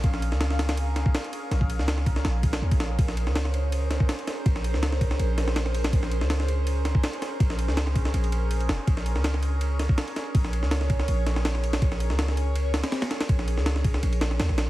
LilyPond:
<<
  \new Staff \with { instrumentName = "Ambient pad" } { \time 4/4 \key bes \minor \tempo 4 = 163 << { f''1~ | f''1 | c''1~ | c''1~ |
c''1~ | c''1 | des''1~ | des''1~ |
des''1~ | des''1 | } \\ { <des' aes' bes'>1~ | <des' aes' bes'>1~ | <des' aes' bes'>1~ | <des' aes' bes'>1~ |
<des' aes' bes'>1~ | <des' aes' bes'>1~ | <des' aes' bes'>1~ | <des' aes' bes'>1~ |
<des' aes' bes'>1~ | <des' aes' bes'>1 | } >> }
  \new Staff \with { instrumentName = "808-style bass" } { \clef bass \time 4/4 \key bes \minor bes,,8. des,2 r4 r16 | bes,,8. des,4~ des,16 bes,,4 ees,16 bes,,8. | bes,,8. des,2 r4 r16 | bes,,8. des,4~ des,16 bes,,2 |
bes,,8. des,2 r4 r16 | bes,,8. des,4~ des,16 bes,,4. f,,16 r16 | bes,,8. des,2 r4 r16 | bes,,8. des,4~ des,16 bes,,2 |
bes,,8. des,2 r4 r16 | bes,,8. des,4~ des,16 bes,,4 ees,16 bes,,8. | }
  \new DrumStaff \with { instrumentName = "Drums" } \drummode { \time 4/4 <bd cymr>16 sn16 cymr16 sn16 <cymr sn>16 sn16 <cymr sn>16 <cymr sn>16 cymr8 <cymr sn>16 bd16 <cymr sn>16 cymr16 cymr8 | <cymr sn>16 bd16 cymr16 sn16 <cymr sn>16 sn16 <bd cymr>16 sn16 <cymr sn>8 <bd cymr>16 <cymr sn>16 r16 <bd cymr>16 <cymr sn>8 | <bd cymr>16 sn16 cymr16 sn16 <cymr sn>16 sn16 cymr8 cymr8 <cymr sn>16 bd16 <cymr sn>16 cymr16 <cymr sn>8 | <bd cymr>16 sn16 cymr16 sn16 <cymr sn>16 sn16 <bd cymr>16 sn16 cymr8 <cymr sn>16 sn16 <cymr sn>16 sn16 cymr16 <cymr sn>16 |
<bd cymr>16 sn16 cymr16 sn16 <cymr sn>16 sn16 cymr8 cymr8 <cymr sn>16 bd16 <cymr sn>16 cymr16 <cymr sn>8 | <bd cymr>16 sn16 cymr16 sn16 <cymr sn>16 sn16 <bd cymr>16 sn16 cymr16 cymr16 cymr8 cymr16 cymr16 <cymr sn>8 | <bd cymr>16 sn16 cymr16 sn16 <cymr sn>16 sn16 cymr8 cymr8 <cymr sn>16 bd16 <cymr sn>16 cymr16 <cymr sn>8 | <bd cymr>16 sn16 cymr16 sn16 <cymr sn>16 sn16 <bd cymr>16 sn16 cymr8 <cymr sn>16 sn16 <cymr sn>16 sn16 cymr16 <cymr sn>16 |
<bd cymr>16 sn16 cymr16 sn16 <cymr sn>16 sn16 cymr8 cymr8 <cymr sn>16 <cymr sn>16 <cymr sn>16 <cymr sn>16 <cymr sn>16 <cymr sn>16 | <bd cymr>16 sn16 cymr16 sn16 <cymr sn>16 sn16 <bd cymr>16 sn16 cymr16 cymr16 <cymr sn>16 sn16 <cymr sn>16 sn16 <cymr sn>8 | }
>>